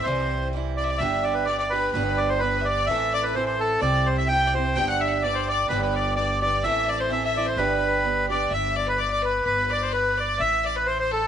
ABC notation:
X:1
M:2/4
L:1/16
Q:"Swing" 1/4=128
K:C
V:1 name="Accordion"
c4 z2 d2 | [K:G] e2 d B d d B2 | B2 d c B2 d2 | e2 d B c c A2 |
d2 c e g2 c2 | g f e2 d c d2 | B B d2 d2 d2 | e2 d c e e d c |
B6 d2 | e2 d B d d B2 | B2 d c B2 d2 | e2 d B c c A2 |]
V:2 name="Fiddle"
c4 z2 d/2 e/2 d | [K:G] e4 d d B2 | B3 c B3/2 e/2 d2 | e2 d B c c A2 |
d2 c e g3/2 d/2 c2 | g f e/2 f/2 e d2 d2 | B B d2 d2 d2 | e2 d c e e2 c |
B6 d2 | e2 d B d d B2 | B2 d2 B2 d2 | e2 d B c c A2 |]
V:3 name="Steel-string acoustic guitar"
[C,E,G,CE]4 [E,G,CE]4 | [K:G] [G,,D,G,B,DG]4 [G,B,DG]2 [G,B,DG]2 | [G,,D,G,B,DG]4 [G,B,DG]4 | [A,,E,CEA]4 [E,CEA]4 |
[C,G,CEG]4 [G,CEG]2 [CEG]2 | [G,,D,G,B,DG]4 [G,B,DG]4 | [G,,D,G,B,DG]4 [G,B,DG]2 [G,B,DG]2 | [A,,E,CEA]4 [E,CEA]2 [CEA]2 |
[G,,D,G,B,DG]4 [G,B,DG]2 [G,B,DG]2 | z8 | z8 | z8 |]
V:4 name="Upright bass" clef=bass
C,,8 | [K:G] G,,,8 | G,,,8 | A,,,8 |
C,,8 | G,,,8 | G,,,8 | A,,,8 |
G,,,8 | G,,,8 | G,,,8 | A,,,8 |]